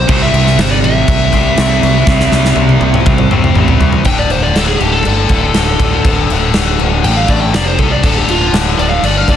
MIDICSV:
0, 0, Header, 1, 5, 480
1, 0, Start_track
1, 0, Key_signature, -1, "minor"
1, 0, Tempo, 496689
1, 86, Time_signature, 4, 2, 24, 8
1, 9050, End_track
2, 0, Start_track
2, 0, Title_t, "Lead electric guitar"
2, 0, Program_c, 0, 29
2, 94, Note_on_c, 0, 72, 92
2, 202, Note_off_c, 0, 72, 0
2, 215, Note_on_c, 0, 76, 100
2, 580, Note_off_c, 0, 76, 0
2, 585, Note_on_c, 0, 72, 82
2, 687, Note_off_c, 0, 72, 0
2, 691, Note_on_c, 0, 74, 93
2, 739, Note_off_c, 0, 74, 0
2, 814, Note_on_c, 0, 76, 94
2, 3407, Note_off_c, 0, 76, 0
2, 3923, Note_on_c, 0, 79, 94
2, 4038, Note_off_c, 0, 79, 0
2, 4048, Note_on_c, 0, 74, 84
2, 4165, Note_off_c, 0, 74, 0
2, 4165, Note_on_c, 0, 72, 82
2, 4279, Note_off_c, 0, 72, 0
2, 4283, Note_on_c, 0, 74, 77
2, 4398, Note_off_c, 0, 74, 0
2, 4410, Note_on_c, 0, 69, 76
2, 4512, Note_off_c, 0, 69, 0
2, 4516, Note_on_c, 0, 68, 77
2, 4636, Note_off_c, 0, 68, 0
2, 4636, Note_on_c, 0, 67, 87
2, 4757, Note_off_c, 0, 67, 0
2, 4757, Note_on_c, 0, 69, 88
2, 4862, Note_off_c, 0, 69, 0
2, 4873, Note_on_c, 0, 69, 98
2, 6281, Note_off_c, 0, 69, 0
2, 6808, Note_on_c, 0, 79, 100
2, 6924, Note_off_c, 0, 79, 0
2, 6924, Note_on_c, 0, 77, 85
2, 7050, Note_off_c, 0, 77, 0
2, 7050, Note_on_c, 0, 74, 75
2, 7152, Note_on_c, 0, 79, 90
2, 7164, Note_off_c, 0, 74, 0
2, 7275, Note_off_c, 0, 79, 0
2, 7282, Note_on_c, 0, 74, 77
2, 7401, Note_off_c, 0, 74, 0
2, 7408, Note_on_c, 0, 72, 87
2, 7530, Note_off_c, 0, 72, 0
2, 7530, Note_on_c, 0, 69, 83
2, 7645, Note_off_c, 0, 69, 0
2, 7652, Note_on_c, 0, 74, 89
2, 7760, Note_on_c, 0, 69, 88
2, 7766, Note_off_c, 0, 74, 0
2, 7902, Note_off_c, 0, 69, 0
2, 7902, Note_on_c, 0, 67, 81
2, 8018, Note_off_c, 0, 67, 0
2, 8018, Note_on_c, 0, 65, 102
2, 8246, Note_off_c, 0, 65, 0
2, 8493, Note_on_c, 0, 74, 92
2, 8593, Note_off_c, 0, 74, 0
2, 8597, Note_on_c, 0, 77, 89
2, 8742, Note_off_c, 0, 77, 0
2, 8742, Note_on_c, 0, 74, 92
2, 8860, Note_off_c, 0, 74, 0
2, 8860, Note_on_c, 0, 77, 88
2, 8971, Note_off_c, 0, 77, 0
2, 8977, Note_on_c, 0, 74, 85
2, 9050, Note_off_c, 0, 74, 0
2, 9050, End_track
3, 0, Start_track
3, 0, Title_t, "Distorted electric guitar"
3, 0, Program_c, 1, 30
3, 87, Note_on_c, 1, 48, 89
3, 106, Note_on_c, 1, 55, 96
3, 115, Note_on_c, 1, 60, 109
3, 1269, Note_off_c, 1, 48, 0
3, 1275, Note_off_c, 1, 60, 0
3, 1279, Note_off_c, 1, 55, 0
3, 1287, Note_on_c, 1, 60, 92
3, 1306, Note_on_c, 1, 55, 82
3, 1314, Note_on_c, 1, 48, 75
3, 1510, Note_off_c, 1, 60, 0
3, 1520, Note_off_c, 1, 55, 0
3, 1524, Note_off_c, 1, 48, 0
3, 1537, Note_on_c, 1, 48, 88
3, 1553, Note_on_c, 1, 55, 89
3, 1563, Note_on_c, 1, 60, 94
3, 1989, Note_off_c, 1, 48, 0
3, 2001, Note_on_c, 1, 48, 97
3, 2003, Note_off_c, 1, 55, 0
3, 2008, Note_off_c, 1, 60, 0
3, 2018, Note_on_c, 1, 55, 103
3, 2030, Note_on_c, 1, 60, 114
3, 3185, Note_off_c, 1, 48, 0
3, 3187, Note_off_c, 1, 60, 0
3, 3194, Note_off_c, 1, 55, 0
3, 3199, Note_on_c, 1, 60, 81
3, 3213, Note_on_c, 1, 55, 80
3, 3226, Note_on_c, 1, 48, 72
3, 3425, Note_off_c, 1, 60, 0
3, 3432, Note_off_c, 1, 55, 0
3, 3433, Note_off_c, 1, 48, 0
3, 3444, Note_on_c, 1, 48, 78
3, 3458, Note_on_c, 1, 55, 90
3, 3472, Note_on_c, 1, 60, 88
3, 3908, Note_off_c, 1, 48, 0
3, 3915, Note_off_c, 1, 55, 0
3, 3922, Note_off_c, 1, 60, 0
3, 3928, Note_on_c, 1, 38, 89
3, 3929, Note_on_c, 1, 45, 104
3, 3938, Note_on_c, 1, 50, 98
3, 4153, Note_off_c, 1, 45, 0
3, 4161, Note_off_c, 1, 38, 0
3, 4164, Note_on_c, 1, 45, 83
3, 4165, Note_on_c, 1, 38, 82
3, 4170, Note_off_c, 1, 50, 0
3, 4174, Note_on_c, 1, 50, 94
3, 4394, Note_off_c, 1, 38, 0
3, 4398, Note_off_c, 1, 45, 0
3, 4405, Note_off_c, 1, 50, 0
3, 4406, Note_on_c, 1, 38, 80
3, 4410, Note_on_c, 1, 45, 85
3, 4417, Note_on_c, 1, 50, 87
3, 4634, Note_off_c, 1, 38, 0
3, 4639, Note_off_c, 1, 45, 0
3, 4646, Note_on_c, 1, 38, 75
3, 4647, Note_off_c, 1, 50, 0
3, 4651, Note_on_c, 1, 45, 84
3, 4658, Note_on_c, 1, 50, 84
3, 4875, Note_off_c, 1, 38, 0
3, 4879, Note_off_c, 1, 45, 0
3, 4886, Note_off_c, 1, 50, 0
3, 4887, Note_on_c, 1, 38, 94
3, 4891, Note_on_c, 1, 45, 94
3, 4898, Note_on_c, 1, 50, 104
3, 5099, Note_off_c, 1, 38, 0
3, 5109, Note_off_c, 1, 45, 0
3, 5111, Note_on_c, 1, 38, 83
3, 5118, Note_off_c, 1, 50, 0
3, 5121, Note_on_c, 1, 45, 82
3, 5130, Note_on_c, 1, 50, 86
3, 5342, Note_off_c, 1, 38, 0
3, 5350, Note_off_c, 1, 45, 0
3, 5354, Note_on_c, 1, 38, 77
3, 5356, Note_off_c, 1, 50, 0
3, 5362, Note_on_c, 1, 45, 86
3, 5367, Note_on_c, 1, 50, 94
3, 5594, Note_off_c, 1, 38, 0
3, 5600, Note_off_c, 1, 50, 0
3, 5601, Note_off_c, 1, 45, 0
3, 5605, Note_on_c, 1, 38, 86
3, 5612, Note_on_c, 1, 45, 82
3, 5612, Note_on_c, 1, 50, 85
3, 5825, Note_off_c, 1, 38, 0
3, 5830, Note_off_c, 1, 45, 0
3, 5837, Note_on_c, 1, 38, 89
3, 5838, Note_off_c, 1, 50, 0
3, 5841, Note_on_c, 1, 45, 93
3, 5850, Note_on_c, 1, 50, 98
3, 6073, Note_off_c, 1, 38, 0
3, 6078, Note_off_c, 1, 45, 0
3, 6082, Note_off_c, 1, 50, 0
3, 6085, Note_on_c, 1, 38, 85
3, 6089, Note_on_c, 1, 45, 80
3, 6094, Note_on_c, 1, 50, 94
3, 6315, Note_off_c, 1, 38, 0
3, 6317, Note_off_c, 1, 45, 0
3, 6321, Note_off_c, 1, 50, 0
3, 6326, Note_on_c, 1, 38, 84
3, 6328, Note_on_c, 1, 45, 88
3, 6332, Note_on_c, 1, 50, 90
3, 6549, Note_off_c, 1, 38, 0
3, 6555, Note_off_c, 1, 45, 0
3, 6561, Note_off_c, 1, 50, 0
3, 6561, Note_on_c, 1, 38, 86
3, 6567, Note_on_c, 1, 45, 87
3, 6573, Note_on_c, 1, 50, 85
3, 6787, Note_off_c, 1, 38, 0
3, 6793, Note_off_c, 1, 45, 0
3, 6799, Note_on_c, 1, 38, 91
3, 6803, Note_off_c, 1, 50, 0
3, 6804, Note_on_c, 1, 45, 100
3, 6815, Note_on_c, 1, 50, 106
3, 7027, Note_off_c, 1, 38, 0
3, 7029, Note_off_c, 1, 45, 0
3, 7033, Note_off_c, 1, 50, 0
3, 7038, Note_on_c, 1, 38, 83
3, 7040, Note_on_c, 1, 45, 82
3, 7045, Note_on_c, 1, 50, 92
3, 7268, Note_off_c, 1, 38, 0
3, 7269, Note_off_c, 1, 45, 0
3, 7271, Note_off_c, 1, 50, 0
3, 7281, Note_on_c, 1, 41, 91
3, 7288, Note_on_c, 1, 48, 105
3, 7297, Note_on_c, 1, 53, 109
3, 7510, Note_off_c, 1, 41, 0
3, 7518, Note_off_c, 1, 48, 0
3, 7522, Note_on_c, 1, 41, 88
3, 7530, Note_on_c, 1, 48, 94
3, 7531, Note_off_c, 1, 53, 0
3, 7535, Note_on_c, 1, 53, 94
3, 7750, Note_off_c, 1, 41, 0
3, 7754, Note_off_c, 1, 48, 0
3, 7766, Note_on_c, 1, 38, 96
3, 7771, Note_on_c, 1, 45, 103
3, 7776, Note_off_c, 1, 53, 0
3, 7780, Note_on_c, 1, 50, 108
3, 7994, Note_off_c, 1, 38, 0
3, 8002, Note_off_c, 1, 45, 0
3, 8004, Note_off_c, 1, 50, 0
3, 8006, Note_on_c, 1, 38, 88
3, 8014, Note_on_c, 1, 45, 94
3, 8016, Note_on_c, 1, 50, 101
3, 8237, Note_off_c, 1, 38, 0
3, 8237, Note_off_c, 1, 45, 0
3, 8248, Note_on_c, 1, 45, 93
3, 8249, Note_off_c, 1, 50, 0
3, 8249, Note_on_c, 1, 38, 86
3, 8261, Note_on_c, 1, 50, 86
3, 8475, Note_off_c, 1, 38, 0
3, 8485, Note_off_c, 1, 45, 0
3, 8486, Note_on_c, 1, 38, 75
3, 8492, Note_off_c, 1, 50, 0
3, 8496, Note_on_c, 1, 45, 88
3, 8504, Note_on_c, 1, 50, 91
3, 8735, Note_off_c, 1, 38, 0
3, 8741, Note_off_c, 1, 45, 0
3, 8745, Note_off_c, 1, 50, 0
3, 8747, Note_on_c, 1, 38, 104
3, 8753, Note_on_c, 1, 45, 102
3, 8757, Note_on_c, 1, 50, 122
3, 8971, Note_off_c, 1, 38, 0
3, 8978, Note_off_c, 1, 45, 0
3, 8982, Note_on_c, 1, 38, 74
3, 8987, Note_off_c, 1, 50, 0
3, 8990, Note_on_c, 1, 45, 83
3, 8998, Note_on_c, 1, 50, 85
3, 9050, Note_off_c, 1, 38, 0
3, 9050, Note_off_c, 1, 45, 0
3, 9050, Note_off_c, 1, 50, 0
3, 9050, End_track
4, 0, Start_track
4, 0, Title_t, "Fingered electric bass"
4, 0, Program_c, 2, 33
4, 88, Note_on_c, 2, 36, 99
4, 307, Note_off_c, 2, 36, 0
4, 323, Note_on_c, 2, 36, 99
4, 544, Note_off_c, 2, 36, 0
4, 563, Note_on_c, 2, 31, 96
4, 783, Note_off_c, 2, 31, 0
4, 809, Note_on_c, 2, 33, 98
4, 1026, Note_off_c, 2, 33, 0
4, 1042, Note_on_c, 2, 36, 91
4, 1262, Note_off_c, 2, 36, 0
4, 1289, Note_on_c, 2, 36, 89
4, 1506, Note_off_c, 2, 36, 0
4, 1528, Note_on_c, 2, 36, 102
4, 1745, Note_off_c, 2, 36, 0
4, 1769, Note_on_c, 2, 36, 92
4, 1985, Note_off_c, 2, 36, 0
4, 2000, Note_on_c, 2, 36, 96
4, 2220, Note_off_c, 2, 36, 0
4, 2243, Note_on_c, 2, 36, 95
4, 2462, Note_off_c, 2, 36, 0
4, 2471, Note_on_c, 2, 36, 88
4, 2695, Note_off_c, 2, 36, 0
4, 2714, Note_on_c, 2, 36, 98
4, 2936, Note_off_c, 2, 36, 0
4, 2967, Note_on_c, 2, 36, 93
4, 3184, Note_off_c, 2, 36, 0
4, 3197, Note_on_c, 2, 36, 90
4, 3418, Note_off_c, 2, 36, 0
4, 3428, Note_on_c, 2, 33, 93
4, 3653, Note_off_c, 2, 33, 0
4, 3673, Note_on_c, 2, 36, 97
4, 3896, Note_off_c, 2, 36, 0
4, 3925, Note_on_c, 2, 26, 92
4, 4150, Note_off_c, 2, 26, 0
4, 4156, Note_on_c, 2, 26, 89
4, 4389, Note_off_c, 2, 26, 0
4, 4397, Note_on_c, 2, 26, 88
4, 4630, Note_off_c, 2, 26, 0
4, 4644, Note_on_c, 2, 26, 85
4, 4873, Note_off_c, 2, 26, 0
4, 4888, Note_on_c, 2, 31, 89
4, 5116, Note_off_c, 2, 31, 0
4, 5120, Note_on_c, 2, 26, 87
4, 5352, Note_off_c, 2, 26, 0
4, 5382, Note_on_c, 2, 26, 95
4, 5596, Note_off_c, 2, 26, 0
4, 5601, Note_on_c, 2, 26, 86
4, 5833, Note_off_c, 2, 26, 0
4, 5844, Note_on_c, 2, 26, 92
4, 6075, Note_off_c, 2, 26, 0
4, 6102, Note_on_c, 2, 26, 89
4, 6324, Note_off_c, 2, 26, 0
4, 6344, Note_on_c, 2, 26, 88
4, 6565, Note_off_c, 2, 26, 0
4, 6578, Note_on_c, 2, 26, 90
4, 6803, Note_off_c, 2, 26, 0
4, 6807, Note_on_c, 2, 33, 90
4, 7038, Note_off_c, 2, 33, 0
4, 7048, Note_on_c, 2, 33, 85
4, 7278, Note_off_c, 2, 33, 0
4, 7287, Note_on_c, 2, 29, 88
4, 7518, Note_off_c, 2, 29, 0
4, 7530, Note_on_c, 2, 36, 91
4, 7760, Note_off_c, 2, 36, 0
4, 7765, Note_on_c, 2, 26, 94
4, 7994, Note_off_c, 2, 26, 0
4, 8000, Note_on_c, 2, 26, 84
4, 8235, Note_off_c, 2, 26, 0
4, 8240, Note_on_c, 2, 26, 93
4, 8475, Note_off_c, 2, 26, 0
4, 8496, Note_on_c, 2, 26, 93
4, 8721, Note_off_c, 2, 26, 0
4, 8727, Note_on_c, 2, 31, 87
4, 8959, Note_off_c, 2, 31, 0
4, 8972, Note_on_c, 2, 26, 84
4, 9050, Note_off_c, 2, 26, 0
4, 9050, End_track
5, 0, Start_track
5, 0, Title_t, "Drums"
5, 82, Note_on_c, 9, 49, 88
5, 86, Note_on_c, 9, 36, 126
5, 179, Note_off_c, 9, 49, 0
5, 183, Note_off_c, 9, 36, 0
5, 328, Note_on_c, 9, 49, 68
5, 425, Note_off_c, 9, 49, 0
5, 452, Note_on_c, 9, 38, 36
5, 548, Note_off_c, 9, 38, 0
5, 567, Note_on_c, 9, 49, 91
5, 572, Note_on_c, 9, 38, 117
5, 664, Note_off_c, 9, 49, 0
5, 669, Note_off_c, 9, 38, 0
5, 812, Note_on_c, 9, 49, 62
5, 909, Note_off_c, 9, 49, 0
5, 1045, Note_on_c, 9, 36, 113
5, 1045, Note_on_c, 9, 49, 85
5, 1141, Note_off_c, 9, 36, 0
5, 1142, Note_off_c, 9, 49, 0
5, 1283, Note_on_c, 9, 36, 81
5, 1289, Note_on_c, 9, 49, 61
5, 1380, Note_off_c, 9, 36, 0
5, 1386, Note_off_c, 9, 49, 0
5, 1521, Note_on_c, 9, 49, 79
5, 1526, Note_on_c, 9, 38, 102
5, 1618, Note_off_c, 9, 49, 0
5, 1623, Note_off_c, 9, 38, 0
5, 1769, Note_on_c, 9, 49, 63
5, 1865, Note_off_c, 9, 49, 0
5, 2001, Note_on_c, 9, 36, 121
5, 2005, Note_on_c, 9, 38, 70
5, 2097, Note_off_c, 9, 36, 0
5, 2102, Note_off_c, 9, 38, 0
5, 2127, Note_on_c, 9, 38, 58
5, 2224, Note_off_c, 9, 38, 0
5, 2240, Note_on_c, 9, 38, 75
5, 2336, Note_off_c, 9, 38, 0
5, 2368, Note_on_c, 9, 38, 70
5, 2464, Note_off_c, 9, 38, 0
5, 2471, Note_on_c, 9, 48, 82
5, 2568, Note_off_c, 9, 48, 0
5, 2600, Note_on_c, 9, 48, 69
5, 2697, Note_off_c, 9, 48, 0
5, 2714, Note_on_c, 9, 48, 84
5, 2810, Note_off_c, 9, 48, 0
5, 2841, Note_on_c, 9, 47, 81
5, 2938, Note_off_c, 9, 47, 0
5, 2957, Note_on_c, 9, 47, 92
5, 2961, Note_on_c, 9, 36, 121
5, 3053, Note_off_c, 9, 47, 0
5, 3058, Note_off_c, 9, 36, 0
5, 3076, Note_on_c, 9, 47, 82
5, 3172, Note_off_c, 9, 47, 0
5, 3199, Note_on_c, 9, 45, 90
5, 3296, Note_off_c, 9, 45, 0
5, 3324, Note_on_c, 9, 45, 85
5, 3420, Note_off_c, 9, 45, 0
5, 3435, Note_on_c, 9, 45, 90
5, 3532, Note_off_c, 9, 45, 0
5, 3557, Note_on_c, 9, 43, 89
5, 3653, Note_off_c, 9, 43, 0
5, 3678, Note_on_c, 9, 43, 111
5, 3774, Note_off_c, 9, 43, 0
5, 3794, Note_on_c, 9, 43, 97
5, 3890, Note_off_c, 9, 43, 0
5, 3910, Note_on_c, 9, 49, 84
5, 3918, Note_on_c, 9, 36, 106
5, 4006, Note_off_c, 9, 49, 0
5, 4015, Note_off_c, 9, 36, 0
5, 4156, Note_on_c, 9, 49, 61
5, 4253, Note_off_c, 9, 49, 0
5, 4402, Note_on_c, 9, 49, 83
5, 4407, Note_on_c, 9, 38, 110
5, 4499, Note_off_c, 9, 49, 0
5, 4504, Note_off_c, 9, 38, 0
5, 4643, Note_on_c, 9, 49, 55
5, 4740, Note_off_c, 9, 49, 0
5, 4881, Note_on_c, 9, 49, 78
5, 4978, Note_off_c, 9, 49, 0
5, 5112, Note_on_c, 9, 49, 56
5, 5118, Note_on_c, 9, 36, 80
5, 5208, Note_off_c, 9, 49, 0
5, 5214, Note_off_c, 9, 36, 0
5, 5355, Note_on_c, 9, 49, 70
5, 5360, Note_on_c, 9, 38, 105
5, 5452, Note_off_c, 9, 49, 0
5, 5456, Note_off_c, 9, 38, 0
5, 5601, Note_on_c, 9, 36, 85
5, 5606, Note_on_c, 9, 49, 59
5, 5698, Note_off_c, 9, 36, 0
5, 5703, Note_off_c, 9, 49, 0
5, 5843, Note_on_c, 9, 36, 109
5, 5846, Note_on_c, 9, 49, 79
5, 5940, Note_off_c, 9, 36, 0
5, 5943, Note_off_c, 9, 49, 0
5, 6089, Note_on_c, 9, 49, 59
5, 6186, Note_off_c, 9, 49, 0
5, 6317, Note_on_c, 9, 49, 77
5, 6322, Note_on_c, 9, 38, 109
5, 6413, Note_off_c, 9, 49, 0
5, 6418, Note_off_c, 9, 38, 0
5, 6565, Note_on_c, 9, 49, 61
5, 6662, Note_off_c, 9, 49, 0
5, 6806, Note_on_c, 9, 49, 82
5, 6902, Note_off_c, 9, 49, 0
5, 7035, Note_on_c, 9, 49, 59
5, 7040, Note_on_c, 9, 36, 83
5, 7132, Note_off_c, 9, 49, 0
5, 7137, Note_off_c, 9, 36, 0
5, 7286, Note_on_c, 9, 49, 79
5, 7291, Note_on_c, 9, 38, 100
5, 7383, Note_off_c, 9, 49, 0
5, 7388, Note_off_c, 9, 38, 0
5, 7524, Note_on_c, 9, 49, 63
5, 7526, Note_on_c, 9, 36, 91
5, 7620, Note_off_c, 9, 49, 0
5, 7622, Note_off_c, 9, 36, 0
5, 7765, Note_on_c, 9, 36, 111
5, 7765, Note_on_c, 9, 49, 86
5, 7862, Note_off_c, 9, 36, 0
5, 7862, Note_off_c, 9, 49, 0
5, 8007, Note_on_c, 9, 49, 65
5, 8104, Note_off_c, 9, 49, 0
5, 8250, Note_on_c, 9, 49, 81
5, 8254, Note_on_c, 9, 38, 115
5, 8346, Note_off_c, 9, 49, 0
5, 8351, Note_off_c, 9, 38, 0
5, 8496, Note_on_c, 9, 49, 55
5, 8593, Note_off_c, 9, 49, 0
5, 8732, Note_on_c, 9, 49, 82
5, 8828, Note_off_c, 9, 49, 0
5, 8967, Note_on_c, 9, 36, 85
5, 8973, Note_on_c, 9, 49, 58
5, 9050, Note_off_c, 9, 36, 0
5, 9050, Note_off_c, 9, 49, 0
5, 9050, End_track
0, 0, End_of_file